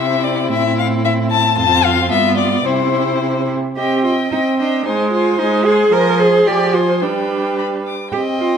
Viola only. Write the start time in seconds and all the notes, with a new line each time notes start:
Already playing: C4
1.58 C4
2.12 B3
2.67 C4
3.78 C4
4.32 C4
4.86 G#3
5.39 G#3
5.92 F3
6.47 F3
7.02 G3
8.13 C4